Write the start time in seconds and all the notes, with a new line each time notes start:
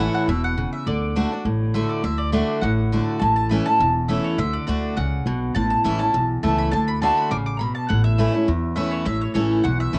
Already playing: A2
0.00 E3 A3 C#4 E4 F#5
0.14 F#5
0.28 E1 B2 E5
0.44 F#5
0.58 C#3
0.73 E5
0.87 D2 D3 D5
1.16 D3 A3 D4 F#4
1.32 D4 F#4
1.45 A1 A2
1.74 D3 A3 D4 F#4 E5
1.89 D5
2.04 D2 D3 E5
2.18 D5
2.32 D3 A3 D4 F#4 D5
2.61 A1 A2 F#5
2.92 D3 A3 D4 F#4
3.19 A1 A2 A5
3.36 A5
3.49 E3 A3 C#4 E4 B5
3.66 C#4 E4 A5
3.80 E1 E2
4.08 E3 A3 C#4 E4 E5
4.24 C#5
4.38 D2 D3 E5
4.53 D5
4.67 D2 D3 A3 D4 F#4 D5
4.97 C#2 C#3 F#5
5.26 B1 B2
5.55 A1 A2 A5
5.70 A5
5.84 A1 E3 A3 C#4 E4 B5
5.99 C#4 E4 A5
6.14 B1 E2
6.43 C#2 E3 A3 C#4 E4 A5
6.58 B5
6.71 D2 D3 A5
6.88 B5
7.02 D3 A3 D4 F#4 A5
7.17 B5
7.31 A1 C#3 D6
7.46 D6
7.57 B2 A#5 B5
7.75 A5
7.89 A1 A2 F#5
8.04 E5
8.18 E3 A3 C#4 E4
8.34 C#4 E4
8.48 E2
8.76 E3 A3 C#4 E4 E5
8.91 C#5
9.06 A1 A2 E5
9.21 C#5
9.34 A1 E3 A3 C#4 E4 C#5
9.64 B1 E2 F#5
9.80 E5
9.93 C#2 E3 A3 C#4 E4